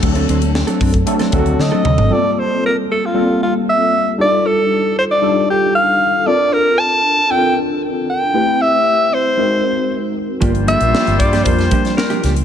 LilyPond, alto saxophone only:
\new Staff \with { instrumentName = "Alto saxophone" } { \time 4/4 \key d \phrygian \tempo 4 = 116 r2 r8 fis'8 ees''4 | \key g \dorian d''16. d''32 c''8 bes'8 a'16 f'8. f'8 e''4 | d''8 a'4 c''16 d''8. g'8 f''4 | d''8 bes'8 a''4 g''8 r4 g''8~ |
g''8 e''4 c''2 r8 | r8 e''4 d''8 c''4 bes'8. r16 | }